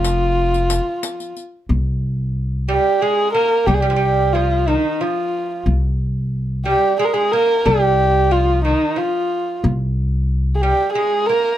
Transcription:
0.00 0.78 F1 medium
0.00 1.32 F3 medium
0.00 1.36 F4 medium
0.04 riq soft
0.54 riq soft
0.70 riq soft
1.03 riq soft
1.20 riq soft
1.37 riq soft
1.69 2.76 C2 medium
2.68 3.02 G3 medium
2.68 3.03 G4 medium
3.02 3.33 G#3 medium
3.02 3.32 G#4 medium
3.33 3.65 A#3 medium
3.33 3.68 A#4 loud
3.67 4.74 C2 medium
3.67 3.81 G3 medium
3.67 3.75 G4 medium
3.74 3.82 G#4 medium
3.81 3.89 G3 medium
3.81 4.35 G4 medium
3.90 3.96 F3 medium
3.96 4.34 G3 medium
4.33 4.68 F3 medium
4.33 4.70 F4 medium
4.68 5.01 D#3 medium
4.68 5.02 D#4 medium
5.01 5.62 F3 medium
5.01 5.67 F4 medium
5.66 6.73 C2 medium
6.66 6.99 G3 medium
6.66 6.96 G4 medium
6.99 7.13 G#3 medium
6.99 7.06 G#4 medium
7.05 7.15 A#4 medium
7.13 7.33 G#3 medium
7.13 7.33 G#4 medium
7.32 7.66 A#3 medium
7.32 7.67 A#4 loud
7.65 8.72 C2 medium
7.65 8.31 G3 medium
7.65 8.33 G4 loud
8.31 8.65 F3 medium
8.31 8.64 F4 medium
8.65 8.98 D#3 medium
8.65 8.99 D#4 medium
8.96 9.59 F3 medium
8.96 9.64 F4 medium
9.64 10.71 C2 medium
10.55 10.63 G#4 medium
10.61 10.95 G3 medium
10.61 10.92 G4 loud
10.93 11.30 G#3 medium
10.93 11.28 G#4 medium
11.26 11.58 A#3 medium
11.26 11.58 A#4 loud

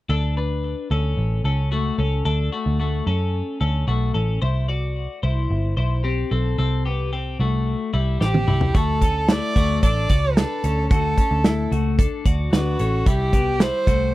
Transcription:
0.09 0.73 D2 medium
0.09 0.37 D4 medium
0.09 0.36 A4 medium
0.37 0.88 D4 soft
0.37 0.87 B4 medium
0.91 1.13 D2 medium
0.91 1.42 C#4 soft
0.91 1.42 A4 medium
1.17 1.40 A1 medium
1.44 1.90 C#2 medium
1.44 1.72 C#4 medium
1.44 1.71 A4 medium
1.72 1.99 A3 medium
1.72 1.98 F#4 medium
1.98 2.21 C#2 medium
1.98 2.26 C#4 soft
1.98 2.24 A4 medium
2.25 2.48 D2 medium
2.25 2.53 D4 medium
2.25 2.52 A4 medium
2.52 2.79 A3 medium
2.52 2.78 F#4 medium
2.66 3.00 D2 medium
2.80 3.07 A3 soft
2.80 3.07 F#4 medium
3.07 3.41 F#2 medium
3.07 3.58 C#4 soft
3.07 3.58 A4 medium
3.61 3.84 D2 medium
3.61 3.88 C#4 medium
3.61 3.87 A4 medium
3.87 4.10 B1 medium
3.87 4.15 A3 medium
3.87 4.14 F#4 medium
4.14 4.38 A1 medium
4.14 4.42 C#4 soft
4.14 4.41 A4 medium
4.42 5.06 C2 medium
4.42 4.69 E4 medium
4.42 4.68 C5 medium
4.69 5.20 F#4 soft
4.69 5.19 D5 medium
5.23 5.46 C2 medium
5.23 5.74 E4 medium
5.23 5.74 C5 medium
5.50 5.73 G1 medium
5.77 6.23 B1 medium
5.77 6.03 E4 soft
5.77 6.04 C5 medium
6.04 6.31 C4 medium
6.04 6.31 G4 medium
6.31 6.54 B1 medium
6.31 6.58 C4 medium
6.31 6.57 A4 medium
6.59 7.35 C2 medium
6.59 6.86 C4 medium
6.59 6.85 A4 medium
6.86 7.13 B3 medium
6.86 7.12 G4 medium
7.13 7.40 C4 soft
7.13 7.40 G4 medium
7.40 7.74 C2 medium
7.40 7.91 A3 soft
7.40 7.91 F#4 medium
7.94 8.17 C2 medium
7.94 8.21 G3 medium
7.94 8.20 E4 medium
8.21 8.44 A1 medium
8.21 8.48 C4 medium
8.21 8.47 G4 medium
8.21 8.78 G4 medium
8.21 snare soft
8.34 high tom medium
8.48 8.71 C2 medium
8.48 8.75 G3 soft
8.48 8.74 E4 medium
8.48 mid tom medium
8.61 floor tom medium
8.75 9.39 D2 medium
8.75 9.02 A3 medium
8.75 9.02 F#4 medium
8.75 9.32 A4 medium
8.75 kick loud
8.75 closed hi-hat medium
9.01 9.29 C#4 soft
9.01 9.28 A4 medium
9.01 kick medium
9.01 closed hi-hat medium
9.29 9.56 A3 medium
9.29 9.56 E4 medium
9.29 9.82 D5 loud
9.29 snare loud
9.29 closed hi-hat medium
9.56 9.79 D2 medium
9.56 9.83 A3 medium
9.56 9.83 F#4 medium
9.56 kick medium
9.56 closed hi-hat medium
9.83 10.06 A1 medium
9.83 10.10 D4 medium
9.83 10.10 A4 medium
9.83 10.38 D5 medium
9.83 kick medium
9.83 closed hi-hat medium
10.09 10.44 C#2 medium
10.09 10.37 F#4 soft
10.09 10.37 D5 medium
10.09 kick medium
10.09 closed hi-hat medium
10.36 10.64 D4 medium
10.36 10.90 A4 medium
10.36 10.64 B4 medium
10.36 snare medium
10.36 closed hi-hat medium
10.64 10.87 D2 medium
10.64 10.91 C#4 medium
10.64 10.91 A4 medium
10.64 closed hi-hat medium
10.90 11.14 D2 medium
10.90 11.18 A3 medium
10.90 11.18 F#4 medium
10.90 11.67 A4 medium
10.90 kick loud
10.90 closed hi-hat medium
11.18 11.45 C#4 medium
11.18 11.45 A4 medium
11.18 kick medium
11.18 closed hi-hat medium
11.31 11.65 D2 medium
11.44 11.71 A3 medium
11.44 11.72 E4 medium
11.44 snare loud
11.44 closed hi-hat medium
11.71 12.06 C#2 medium
11.71 11.99 A3 medium
11.71 11.98 F#4 medium
11.71 closed hi-hat medium
11.99 12.26 D4 medium
11.99 12.26 A4 medium
11.99 kick medium
11.99 closed hi-hat medium
12.25 12.48 D2 medium
12.25 12.53 F#4 medium
12.25 12.52 D5 medium
12.25 kick medium
12.25 closed hi-hat medium
12.53 12.75 D2 medium
12.53 12.80 D4 medium
12.53 13.08 F#4 medium
12.53 12.80 B4 medium
12.53 snare medium
12.53 closed hi-hat medium
12.79 13.03 A1 medium
12.79 13.07 C#4 medium
12.79 13.07 A4 medium
12.79 closed hi-hat medium
13.06 13.70 C2 medium
13.06 13.34 G3 medium
13.06 13.33 E4 medium
13.06 13.64 G4 medium
13.06 kick medium
13.06 closed hi-hat medium
13.33 13.61 B3 medium
13.33 13.61 G4 medium
13.33 kick medium
13.33 closed hi-hat medium
13.60 13.88 G3 medium
13.60 13.88 E4 medium
13.60 14.14 C5 medium
13.60 snare medium
13.60 closed hi-hat medium
13.87 14.14 C2 medium
13.87 14.14 A3 medium
13.87 14.14 F#4 medium
13.87 kick medium
13.87 closed hi-hat medium

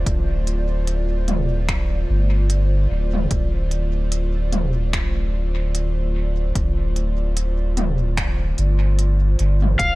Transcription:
0.00 9.95 D3 medium
0.00 9.95 A3 medium
0.00 9.95 F4 medium
0.00 9.95 C5 medium
0.00 9.95 D5 medium
0.06 2.06 D1 loud
0.06 kick loud
0.06 closed hi-hat soft
0.47 closed hi-hat soft
0.87 closed hi-hat soft
1.28 closed hi-hat soft
1.28 mid tom medium
1.69 finger snap medium
1.69 kick loud
1.69 closed hi-hat soft
2.10 2.87 G1 medium
2.50 closed hi-hat medium
2.91 3.27 D1 loud
3.14 mid tom medium
3.31 6.52 D1 loud
3.31 kick loud
3.31 closed hi-hat medium
3.71 closed hi-hat soft
4.12 closed hi-hat medium
4.52 closed hi-hat soft
4.52 mid tom medium
4.93 finger snap medium
4.93 kick loud
4.93 closed hi-hat soft
5.75 closed hi-hat medium
6.55 8.55 D1 loud
6.55 kick loud
6.55 closed hi-hat medium
6.96 closed hi-hat soft
7.37 closed hi-hat medium
7.77 closed hi-hat soft
7.77 mid tom medium
8.17 finger snap medium
8.17 kick loud
8.17 closed hi-hat medium
8.58 9.36 G1 medium
8.58 closed hi-hat soft
8.99 closed hi-hat medium
9.39 9.76 G1 medium
9.39 closed hi-hat soft
9.62 mid tom medium
9.79 9.95 D1 loud
9.79 9.95 F5 loud
9.79 kick loud
9.79 closed hi-hat medium

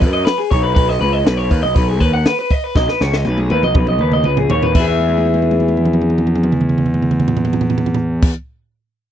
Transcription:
0.01 0.25 F#2 medium
0.01 0.13 B4 medium
0.01 kick medium
0.01 open hi-hat medium
0.13 0.25 D#5 medium
0.25 0.38 B4 medium
0.25 snare loud
0.25 open hi-hat medium
0.38 0.51 G#4 medium
0.51 0.98 B1 loud
0.51 0.63 C#5 medium
0.51 kick loud
0.51 open hi-hat medium
0.63 0.74 B4 medium
0.75 0.89 B4 loud
0.75 kick loud
0.75 open hi-hat loud
0.89 1.00 D#5 medium
0.89 snare soft
1.01 1.24 C#2 loud
1.01 1.13 B4 medium
1.01 open hi-hat medium
1.13 1.25 D#5 medium
1.25 1.49 B1 loud
1.25 1.37 B4 loud
1.25 snare loud
1.25 open hi-hat medium
1.37 1.50 C#5 medium
1.50 1.63 D#2 loud
1.50 1.62 B4 medium
1.50 kick medium
1.50 open hi-hat medium
1.63 1.75 B1 medium
1.63 1.75 D#5 medium
1.75 2.01 B1 loud
1.75 1.88 B4 loud
1.75 kick loud
1.75 open hi-hat loud
1.88 2.00 G#4 medium
2.00 2.24 D#2 loud
2.00 2.13 B4 medium
2.00 kick medium
2.00 open hi-hat medium
2.13 2.26 F#5 medium
2.25 2.38 B4 medium
2.25 snare loud
2.25 open hi-hat medium
2.39 2.51 B4 medium
2.51 2.64 D#5 medium
2.51 kick loud
2.51 open hi-hat medium
2.64 2.76 B4 medium
2.75 2.87 B1 loud
2.75 2.89 D#5 loud
2.75 kick loud
2.75 snare medium
2.89 3.01 B4 medium
2.89 snare medium
3.01 3.24 C#2 loud
3.01 3.14 C#5 medium
3.01 snare medium
3.13 3.26 D#5 medium
3.13 snare medium
3.25 3.49 B1 loud
3.25 3.39 B4 medium
3.25 high tom medium
3.38 3.51 G#4 medium
3.38 high tom medium
3.50 3.63 D#2 loud
3.50 3.64 B4 medium
3.50 high tom medium
3.63 3.74 B1 medium
3.63 3.76 D#5 medium
3.63 mid tom medium
3.75 4.00 B1 loud
3.75 3.88 B4 loud
3.75 kick loud
3.75 mid tom loud
3.87 4.01 D#5 medium
3.87 mid tom medium
3.99 4.23 D#2 loud
3.99 4.13 B4 medium
3.99 mid tom medium
4.12 4.26 D#5 medium
4.12 mid tom medium
4.24 4.48 C#2 medium
4.24 4.38 B4 medium
4.24 mid tom loud
4.37 4.50 G#4 medium
4.37 floor tom loud
4.50 4.72 D#2 medium
4.50 4.63 C#5 medium
4.50 floor tom loud
4.62 4.76 B4 medium
4.62 floor tom loud
4.75 8.29 E2 medium
4.75 4.87 E4 medium
4.75 kick loud
4.75 crash loud
4.80 8.31 G#4 medium
4.84 8.33 B4 medium
4.84 8.35 E5 medium
5.00 high tom soft
5.09 high tom medium
5.17 high tom medium
5.25 high tom soft
5.34 high tom medium
5.42 high tom medium
5.51 high tom medium
5.60 high tom medium
5.68 high tom medium
5.77 mid tom medium
5.85 mid tom medium
5.93 mid tom medium
6.02 mid tom medium
6.10 mid tom medium
6.18 mid tom medium
6.27 mid tom medium
6.36 mid tom medium
6.43 mid tom medium
6.52 mid tom medium
6.61 mid tom medium
6.69 mid tom medium
6.78 mid tom medium
6.86 mid tom medium
6.94 mid tom medium
7.02 mid tom medium
7.11 mid tom medium
7.20 mid tom medium
7.28 floor tom medium
7.37 floor tom loud
7.45 floor tom medium
7.53 floor tom medium
7.61 floor tom medium
7.70 floor tom medium
7.78 floor tom loud
7.86 floor tom medium
7.94 floor tom loud
8.22 kick loud
8.22 crash loud

